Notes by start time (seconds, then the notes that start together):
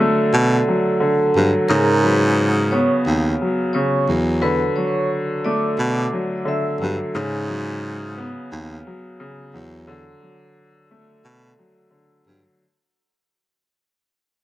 Already playing: D3 F#3
0.00 A3
0.33 B2
0.68 F#3
1.00 D3
1.36 G2 F#3
1.68 G#2 C#3 A#4 A#5
2.03 F#3 B4 B5
2.71 B3 C#5 C#6
3.06 D#2
3.42 F#3
3.73 C#3 C#5 C#6
4.08 E2 F#3
4.42 D3 B4 B5
4.76 F#3 C#5 C#6
5.45 A3 D5 D6
5.79 B2
6.13 F#3
6.45 D3 E5 E6
6.81 G2 F#3
7.15 G#2 C#3
7.48 F#3
8.18 B3
8.52 D#2
8.87 F#3
9.20 C#3
9.54 E2 F#3
9.87 D3
10.23 F#3
10.91 A3
11.24 B2
11.59 F#3
11.91 D3
12.27 G2 F#3